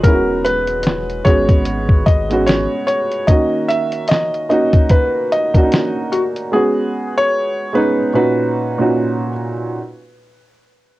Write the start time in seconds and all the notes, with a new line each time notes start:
0.03 E1 G#3 B3 C#4 E4 A#4, kick, closed hi-hat
0.13 F#4
0.45 B4, closed hi-hat
0.67 closed hi-hat
0.83 snare, closed hi-hat
1.10 closed hi-hat
1.24 G#1 G#3 B3 C#4 F#4 C#5, kick, closed hi-hat
1.49 kick, closed hi-hat
1.65 closed hi-hat
1.89 kick
2.06 D#5, kick, closed hi-hat
2.29 G#3 B3 C#4 F#4, closed hi-hat
2.46 C#5, snare, closed hi-hat
2.87 C#5, closed hi-hat
3.12 closed hi-hat
3.27 D#3 A#3 C#4 D#5, kick, closed hi-hat
3.31 F#4
3.69 E5, closed hi-hat
3.92 closed hi-hat
4.08 D#5, snare, closed hi-hat
4.34 closed hi-hat
4.49 A#3 C#4 D#4 F#4 D#5, closed hi-hat
4.73 kick, closed hi-hat
4.89 B4, kick, closed hi-hat
5.32 D#5, closed hi-hat
5.54 A#3 C#4 D4 F#4, kick, closed hi-hat
5.63 D#4
5.72 snare, closed hi-hat
6.12 F#4, closed hi-hat
6.36 closed hi-hat
6.51 G#3 B3 C#4 F#4 G#4
7.18 C#5
7.73 G#3 B3 C#4 D#4 B4
8.13 A#2 C#4 D#4 F#4 B4
8.78 A#2 C#4 D#4 F#4